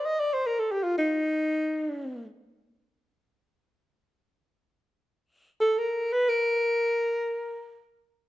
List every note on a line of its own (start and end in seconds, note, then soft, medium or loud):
0.06 0.21 D#5 medium
0.20 0.35 D5 medium
0.34 0.48 C5 medium
0.47 0.61 A#4 medium
0.59 0.73 A4 medium
0.72 0.85 G4 medium
0.83 0.95 F4 medium
0.98 2.25 D#4 medium
5.61 5.80 A4 loud
5.79 6.14 A#4 medium
6.13 6.31 B4 loud
6.29 7.84 A#4 medium